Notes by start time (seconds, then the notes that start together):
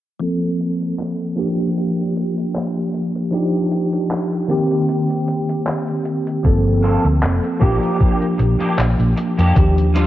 0.19 F3 A#3 C4 A4, closed hi-hat
0.61 closed hi-hat
0.82 closed hi-hat
0.99 clap, closed hi-hat
1.21 closed hi-hat
1.36 F3 A#3 D4 G4, closed hi-hat
1.60 closed hi-hat
1.77 closed hi-hat
1.99 closed hi-hat
2.16 closed hi-hat
2.38 closed hi-hat
2.55 clap, closed hi-hat
2.76 closed hi-hat
2.94 closed hi-hat
3.15 closed hi-hat
3.31 F3 D4 D#4 G4, closed hi-hat
3.72 closed hi-hat
3.93 closed hi-hat
4.11 clap, closed hi-hat
4.32 closed hi-hat
4.48 D#3 A#3 C4 G4, closed hi-hat
4.71 closed hi-hat
4.89 closed hi-hat
5.10 closed hi-hat
5.28 closed hi-hat
5.49 closed hi-hat
5.67 clap, closed hi-hat
5.88 closed hi-hat
6.05 closed hi-hat
6.27 closed hi-hat
6.43 G1 F3 A#3 C4 A4, kick, closed hi-hat
6.83 A#3 C4 F4 A4, closed hi-hat
7.05 D2, closed hi-hat
7.23 F1, clap, closed hi-hat
7.44 closed hi-hat
7.60 A#1 F3 A#3 D4 G4, kick, closed hi-hat
7.83 closed hi-hat
8.01 kick, closed hi-hat
8.22 closed hi-hat
8.38 A#1, muted clean electric guitar stroke, closed hi-hat
8.60 A#3 D4 G4, muted fingered electric bass stroke, closed hi-hat
8.78 A#1, clap, closed hi-hat
8.99 A#1, closed hi-hat
9.17 muted clean electric guitar stroke, closed hi-hat
9.38 F2 A#3 D4 G4, closed hi-hat
9.55 D#2 D#3 F3 D4 G4, kick, closed hi-hat
9.78 closed hi-hat
9.94 G3 D4 F4, closed hi-hat